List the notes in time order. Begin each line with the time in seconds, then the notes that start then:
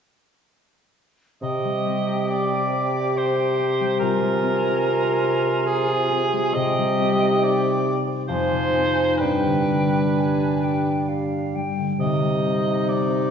1.42 C3 G4 D#5 G5
1.64 G3
1.86 C4
2.09 G4
2.30 C5 D5
2.52 G4
2.73 C5
2.94 G4
3.15 C5
3.37 G4
3.59 C4
3.80 G3
4.00 C3 F4 A#4 G#5
4.22 G#3
4.42 C4
4.62 F4
4.83 G#4
5.03 C5
5.24 G#4
5.45 C5
5.65 G#4
5.87 F4
6.09 C4
6.33 G#3
6.54 C3 G4 D#5 G5
6.78 G3
6.99 C4
7.21 D#4
7.43 G4 D5
7.65 C5
7.86 G4
8.07 C5
8.28 F2 F3 D#4 C5 G#5
8.52 C3
8.75 C4
8.97 D#4
9.18 G2 G3 D4 B4 G5
9.44 D3
9.68 G3
9.92 D4
10.16 G4 G#5
10.39 D4
10.63 G4 G5
10.86 D4
11.09 G4 F5
11.32 D4
11.55 G3 G5
11.78 D3
11.99 C3 D#4 D#5
12.22 G3
12.44 C4
12.66 G4
12.88 C4 D5
13.10 C5